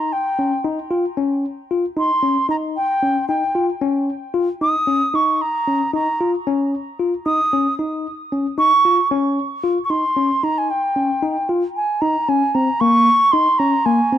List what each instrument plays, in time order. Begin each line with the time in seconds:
Already playing: tine electric piano D#4, flute A#5
0.13 flute G5
0.39 tine electric piano C#4
0.65 tine electric piano D#4
0.91 tine electric piano F4
1.17 tine electric piano C#4
1.71 tine electric piano F4
1.97 tine electric piano D#4, flute C6
2.23 tine electric piano C#4
2.49 tine electric piano D#4, flute A#5
2.76 flute G5
3.03 tine electric piano C#4
3.28 tine electric piano D#4, flute G5
3.55 tine electric piano F4
3.82 tine electric piano C#4
4.34 tine electric piano F4
4.61 tine electric piano D#4, flute D#6
4.87 tine electric piano C#4
5.14 tine electric piano D#4, flute C#6
5.41 flute A#5
5.67 tine electric piano C#4
5.94 tine electric piano D#4, flute A#5
6.21 tine electric piano F4
6.47 tine electric piano C#4
7.00 tine electric piano F4
7.26 tine electric piano D#4, flute D#6
7.53 tine electric piano C#4
7.79 tine electric piano D#4
8.32 tine electric piano C#4
8.58 tine electric piano D#4, flute C#6
8.85 tine electric piano F4
9.11 tine electric piano C#4
9.64 tine electric piano F4
9.85 flute C#6
9.90 tine electric piano D#4, flute C6
10.17 tine electric piano C#4
10.43 tine electric piano D#4, flute A#5
10.58 flute G#5
10.70 flute G5
10.96 tine electric piano C#4
11.22 tine electric piano D#4
11.49 tine electric piano F4
11.76 flute G#5
12.01 tine electric piano D#4, flute A#5
12.29 tine electric piano C#4, flute G#5
12.55 tine electric piano C4, flute A#5
12.80 tine electric piano A#3, flute C#6
13.32 tine electric piano D#4, flute C6
13.59 tine electric piano C#4, flute A#5
13.86 tine electric piano A#3, flute G#5
14.12 tine electric piano C4